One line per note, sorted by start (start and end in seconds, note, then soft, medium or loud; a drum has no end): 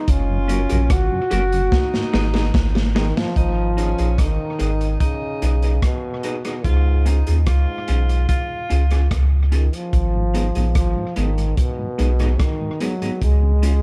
0.00 0.12 D#4 medium
0.08 0.67 F#1 loud
0.08 0.93 C#4 loud
0.08 1.29 F4 loud
0.08 kick loud
0.08 closed hi-hat medium
0.30 0.39 F#2 medium
0.30 0.39 C#3 medium
0.48 0.59 F#3 medium
0.48 0.59 A#3 medium
0.48 0.59 C#4 medium
0.48 0.60 F#4 medium
0.48 0.60 A#4 medium
0.48 closed hi-hat medium
0.70 0.89 A#1 medium
0.70 0.80 F#2 medium
0.70 0.80 C#3 medium
0.70 0.78 C#4 soft
0.70 0.78 F#4 medium
0.70 0.78 A#4 medium
0.70 closed hi-hat medium
0.70 cowbell medium
0.90 1.10 G#1 medium
0.90 2.55 F#4 loud
0.90 kick loud
0.90 cross-stick loud
0.90 closed hi-hat loud
1.12 1.21 F#2 medium
1.12 1.21 C#3 medium
1.30 1.69 F#1 medium
1.30 1.41 F#3 medium
1.30 1.41 A#3 medium
1.30 1.42 C#4 medium
1.30 1.41 C#4 medium
1.30 1.42 F#4 medium
1.30 1.42 A#4 loud
1.30 closed hi-hat medium
1.30 cowbell medium
1.52 1.62 F#2 medium
1.52 1.62 C#3 medium
1.52 closed hi-hat soft
1.72 2.93 D#4 medium
1.72 kick loud
1.72 snare medium
1.94 2.03 G#2 medium
1.94 2.03 D#3 medium
1.94 snare medium
2.13 2.51 G#1 loud
2.13 2.23 G#3 medium
2.13 2.23 B3 medium
2.13 2.24 D#4 medium
2.13 2.23 D#4 medium
2.13 2.24 G#4 medium
2.13 2.25 B4 loud
2.13 snare medium
2.34 2.44 G#2 medium
2.34 2.44 D#3 medium
2.34 2.43 D#4 medium
2.34 2.42 G#4 medium
2.34 2.42 B4 medium
2.34 snare medium
2.34 cowbell medium
2.54 3.13 G#1 loud
2.54 kick loud
2.54 snare medium
2.75 2.84 G#2 medium
2.75 2.85 D#3 medium
2.75 snare medium
2.75 cowbell medium
2.95 3.20 D#3 loud
2.95 3.05 G#3 medium
2.95 3.05 B3 medium
2.95 3.06 D#4 medium
2.95 3.05 D#4 medium
2.95 3.06 G#4 medium
2.95 3.07 B4 medium
2.95 snare loud
3.17 3.26 G#2 medium
3.17 3.26 D#3 medium
3.17 3.37 F3 loud
3.17 snare loud
3.36 3.95 G#1 loud
3.36 4.15 F3 loud
3.36 3.69 D#4 loud
3.36 kick loud
3.36 closed hi-hat medium
3.77 4.20 C#4 medium
3.77 3.88 D#4 medium
3.77 3.89 G#4 medium
3.77 3.89 B4 medium
3.77 closed hi-hat medium
3.98 4.17 A#1 medium
3.98 4.07 D#4 soft
3.98 4.07 G#4 medium
3.98 4.06 B4 medium
3.98 closed hi-hat medium
4.18 4.38 G#1 medium
4.18 4.97 D#3 medium
4.18 4.97 D#4 medium
4.18 kick loud
4.18 cross-stick medium
4.18 closed hi-hat loud
4.59 4.97 G#1 medium
4.59 4.70 D#4 medium
4.59 4.70 G#4 medium
4.59 4.71 B4 loud
4.59 closed hi-hat medium
4.81 closed hi-hat soft
5.00 5.85 C#3 medium
5.00 5.78 D#4 loud
5.00 kick loud
5.00 closed hi-hat medium
5.42 5.80 B1 medium
5.42 5.53 D#4 medium
5.42 5.53 G#4 medium
5.42 5.53 B4 medium
5.42 closed hi-hat medium
5.62 5.72 D#4 soft
5.62 5.71 G#4 medium
5.62 5.71 B4 medium
5.62 closed hi-hat soft
5.82 6.45 B2 medium
5.82 kick loud
5.82 cross-stick loud
5.82 closed hi-hat medium
6.23 6.35 D#4 medium
6.23 6.35 G#4 medium
6.23 6.35 B4 medium
6.23 closed hi-hat medium
6.45 6.68 B2 medium
6.45 6.53 D#4 soft
6.45 6.53 G#4 medium
6.45 6.53 B4 medium
6.45 cross-stick medium
6.45 closed hi-hat soft
6.64 7.23 C#2 loud
6.64 7.21 G#2 medium
6.64 7.08 F4 loud
6.64 kick loud
6.64 closed hi-hat medium
7.05 7.16 C#4 medium
7.05 7.39 D#4 medium
7.05 7.17 F4 medium
7.05 7.17 G#4 medium
7.05 closed hi-hat medium
7.27 7.46 D#2 medium
7.27 7.36 C#4 soft
7.27 7.35 F4 medium
7.27 7.35 G#4 medium
7.27 closed hi-hat medium
7.46 7.66 C#2 medium
7.46 8.67 G#2 medium
7.46 8.25 F4 loud
7.46 kick loud
7.46 cross-stick loud
7.46 closed hi-hat medium
7.88 8.26 B1 medium
7.88 7.99 C#4 medium
7.88 7.99 F4 medium
7.88 7.99 G#4 medium
7.88 closed hi-hat medium
8.09 closed hi-hat soft
8.28 9.07 F4 loud
8.28 kick loud
8.28 closed hi-hat medium
8.70 9.08 C#2 medium
8.70 8.81 C#4 medium
8.70 8.81 F4 medium
8.70 8.81 G#4 medium
8.70 closed hi-hat medium
8.91 9.00 C#4 soft
8.91 8.99 F4 medium
8.91 8.99 G#4 medium
8.91 cross-stick medium
8.91 closed hi-hat soft
9.11 9.70 C#2 medium
9.11 kick loud
9.11 cross-stick loud
9.11 closed hi-hat medium
9.52 9.77 D#3 medium
9.52 9.63 C#4 medium
9.52 9.63 F4 medium
9.52 9.63 G#4 medium
9.52 closed hi-hat medium
9.73 10.76 F3 medium
9.73 closed hi-hat soft
9.93 10.52 G#1 loud
9.93 kick loud
9.93 closed hi-hat medium
10.15 10.24 G#2 soft
10.15 10.24 D#3 medium
10.34 10.44 G#3 medium
10.34 10.45 B3 medium
10.34 10.44 B3 medium
10.34 10.45 D#4 medium
10.34 10.44 D#4 medium
10.34 10.46 G#4 medium
10.34 closed hi-hat medium
10.55 10.74 A#1 medium
10.55 10.65 G#2 medium
10.55 10.65 D#3 medium
10.55 10.64 B3 soft
10.55 10.64 D#4 medium
10.55 10.63 G#4 medium
10.55 closed hi-hat medium
10.75 10.95 G#1 medium
10.75 11.20 F3 medium
10.75 kick loud
10.75 cross-stick loud
10.75 closed hi-hat loud
10.96 11.06 G#2 medium
10.96 11.06 D#3 medium
11.16 11.54 G#1 medium
11.16 11.61 D#3 loud
11.16 11.26 G#3 medium
11.16 11.26 B3 medium
11.16 11.27 B3 medium
11.16 11.26 D#4 medium
11.16 11.27 D#4 medium
11.16 11.28 G#4 medium
11.16 closed hi-hat medium
11.38 11.47 G#2 medium
11.38 11.47 D#3 medium
11.38 closed hi-hat soft
11.57 12.43 B2 medium
11.57 kick loud
11.57 closed hi-hat medium
11.79 11.88 G#2 medium
11.79 11.88 D#3 medium
11.98 12.37 B1 medium
11.98 12.08 G#3 medium
11.98 12.08 B3 medium
11.98 12.09 B3 medium
11.98 12.08 D#4 medium
11.98 12.10 D#4 medium
11.98 12.10 G#4 medium
11.98 closed hi-hat medium
12.19 12.29 G#2 medium
12.19 12.29 D#3 medium
12.19 12.28 B3 soft
12.19 12.28 D#4 medium
12.19 12.28 G#4 medium
12.19 cross-stick medium
12.19 closed hi-hat soft
12.40 12.83 D#3 medium
12.40 kick loud
12.40 cross-stick loud
12.40 closed hi-hat medium
12.61 12.70 G#2 medium
12.61 12.70 D#3 medium
12.80 13.22 F#3 loud
12.80 12.90 G#3 medium
12.80 12.90 B3 medium
12.80 12.91 B3 medium
12.80 12.90 D#4 medium
12.80 12.92 D#4 medium
12.80 12.92 G#4 medium
12.80 closed hi-hat medium
13.01 13.11 G#2 medium
13.01 13.11 D#3 medium
13.01 13.10 B3 soft
13.01 13.10 D#4 soft
13.01 13.10 G#4 medium
13.01 closed hi-hat soft
13.21 13.80 C#2 loud
13.21 13.82 G#3 loud
13.21 kick medium
13.21 closed hi-hat medium
13.43 13.52 C#3 medium
13.62 13.72 G#3 medium
13.62 13.72 C#4 medium
13.62 13.73 C#4 medium
13.62 13.73 F4 medium
13.62 13.74 F4 medium
13.62 13.74 G#4 loud
13.62 closed hi-hat medium